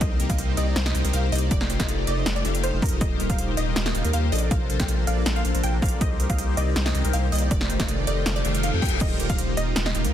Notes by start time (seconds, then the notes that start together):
Already playing: A4 C5
0.01 C2 C3 A#3 C4 D#4 G4 C5 D#5, kick, closed hi-hat
0.11 A#4
0.20 C2 A#3 C4 D#4 G4 A#4 C5, closed hi-hat
0.30 C2 A#3 C4 D#4 G4 A#4 D#5 F5, kick, closed hi-hat
0.38 C2 A#3 C4 D#4 G4 C5, closed hi-hat
0.48 C5
0.57 C2 A#3 C4 D#4 G4 D5 D#5, closed hi-hat
0.67 A#4
0.76 C2 A#3 C4 D#4 G4 C5, snare, closed hi-hat
0.86 A#4 D#5, snare
0.95 C2 A#3 C4 D#4 G4 D#5, closed hi-hat
1.05 C2 A#3 C4 D#4 G4 A#4 C5, closed hi-hat
1.13 C2 A#3 C4 D#4 G4 C5 F5, closed hi-hat
1.23 A#4
1.32 C2 A#3 C4 D#4 G4 C5 D5 D#5, closed hi-hat, open hi-hat
1.38 A#4, closed hi-hat
1.51 F1 G3 A3 D4 D#4 F4 G4 D5, kick, closed hi-hat
1.61 C5, snare
1.70 F1 A3 D#4 F4 G4 C5, closed hi-hat
1.80 F1 A3 D#4 F4 G4 A4 D#5 F5, kick, snare, closed hi-hat
1.89 F1 A3 D#4 F4 G4 C5 D5, closed hi-hat
1.99 A4
2.07 F1 A3 D#4 F4 G4 D5 D#5, closed hi-hat
2.17 C5
2.26 F1 A3 D#4 F4 G4 D5, snare, closed hi-hat
2.36 A4 D5
2.45 F1 A3 D#4 F4 G4 F5, closed hi-hat
2.55 G4, closed hi-hat
2.64 C5 D#5, closed hi-hat
2.73 F1 A3 D#4 F4 G4 A4 C5
2.82 F2 A3 D#4 F4 G4 A#4 D#5, kick, closed hi-hat, open hi-hat
2.89 F1 A3 D#4 F4 G4 C5 D#5, closed hi-hat
3.01 D#1 C3 A#3 D#4 F4 G4 C5 D#5, kick, closed hi-hat
3.11 C5
3.20 D#1 A#3 D#4 F4 G4 A#4, closed hi-hat
3.30 D#1 A#3 D#4 F4 G4 A#4 F5, kick, closed hi-hat
3.38 D#1 A#3 D#4 F4 G4 C5, closed hi-hat
3.48 A#4
3.57 D#1 A#3 D#4 F4 G4 D#5, closed hi-hat
3.67 C5
3.76 D#1 A#3 D#4 F4 G4 C5, snare, closed hi-hat
3.86 A#4 D#5, snare
3.95 D#1 A#3 D#4 F4 G4 C5 F5, closed hi-hat
4.05 D#2 A#3 D#4 F4 G4 A#4, closed hi-hat
4.13 D#2 A#3 D#4 F4 G4 C5 F5, closed hi-hat
4.23 C5
4.32 A#1 A#3 D4 F4 A4 D5 D#5, closed hi-hat, open hi-hat
4.38 A#4, closed hi-hat
4.51 A#1 A#3 D4 F4 A4 C5 F5, kick, closed hi-hat
4.61 A#4
4.70 A#1 A#3 D4 F4 A4 C5, closed hi-hat
4.80 A#1 A#3 D4 F4 A4 C5 F5 G5, kick, snare, closed hi-hat
4.88 A#1 A#3 D4 F4 A4 C5, closed hi-hat
4.98 A#4
5.07 A#1 A#3 D4 F4 A4 C5 D5 F5, closed hi-hat
5.17 A#4
5.26 A#1 A#3 D4 F4 A4 C5, snare, closed hi-hat
5.36 C5 F5
5.45 A#1 A#3 D4 F4 A4 F5, closed hi-hat
5.55 A#1 A#3 D4 F4 A4 A#4 C5, closed hi-hat
5.63 A#1 A#3 D4 F4 A4 C5 G5, closed hi-hat
5.73 A#4
5.82 A#1 A#3 D4 F4 A4 D5 F5, kick, closed hi-hat, open hi-hat
5.88 C5, closed hi-hat
6.01 C2 C3 D#3 A#3 C4 D#4 G4 C5 D#5, kick, closed hi-hat
6.11 A#4
6.20 C2 A#3 C4 D#4 G4 A#4 C5, closed hi-hat
6.30 C2 A#3 C4 D#4 G4 A#4 D#5 F5, kick, closed hi-hat
6.38 C2 A#3 C4 D#4 G4 C5, closed hi-hat
6.48 C5
6.57 C2 A#3 C4 D#4 G4 D5 D#5, closed hi-hat
6.67 A#4
6.76 C2 A#3 C4 D#4 G4 C5, snare, closed hi-hat
6.86 A#4 D#5, snare
6.95 C2 A#3 C4 D#4 G4 D#5, closed hi-hat
7.05 C2 A#3 C4 D#4 G4 A#4 C5, closed hi-hat
7.13 C2 A#3 C4 D#4 G4 C5 F5, closed hi-hat
7.23 A#4
7.32 C2 A#3 C4 D#4 G4 C5 D5 D#5, closed hi-hat, open hi-hat
7.38 A#4, closed hi-hat
7.51 F1 D3 G3 A3 D#4 F4 G4 D5, kick, closed hi-hat
7.61 C5, snare
7.70 F1 A3 D#4 F4 G4 C5, closed hi-hat
7.80 F1 A3 D#4 F4 G4 D#5 F5, kick, snare, closed hi-hat
7.88 F1 A3 D#4 F4 G4 C5 D5, closed hi-hat
7.98 A4
8.07 F1 A3 D#4 F4 G4 D5 D#5, closed hi-hat
8.17 C5
8.26 F1 A3 D#4 F4 G4 D5, snare, closed hi-hat, reverse cymbal
8.36 A4 D5
8.45 F1 A3 D#4 F4 G4 D5 F5, closed hi-hat
8.55 A4, closed hi-hat
8.63 A4 F5, closed hi-hat
8.73 F2 A3 D#4 F4 G4 C5
8.82 F2 A3 D#4 F4 G4 D#5 G5, kick, closed hi-hat, open hi-hat
8.88 F1 A3 D#4 F4 G4 D5 D#5, closed hi-hat
9.01 D#1 C3 A#3 D#4 F4 G4 C5 D#5, kick, closed hi-hat, crash
9.11 C5
9.20 D#1 A#3 D#4 F4 G4 A#4, closed hi-hat
9.30 D#1 A#3 D#4 F4 G4 A#4 F5, kick, closed hi-hat
9.38 D#1 A#3 D#4 F4 G4 C5, closed hi-hat
9.48 A#4
9.57 D#1 A#3 D#4 F4 G4 D#5, closed hi-hat
9.67 C5
9.76 D#1 A#3 D#4 F4 G4 C5, snare, closed hi-hat
9.86 A#4 D#5, snare
9.95 D#1 A#3 D#4 F4 G4 C5 F5, closed hi-hat
10.05 D#2 A#3 D#4 F4 G4 A#4, closed hi-hat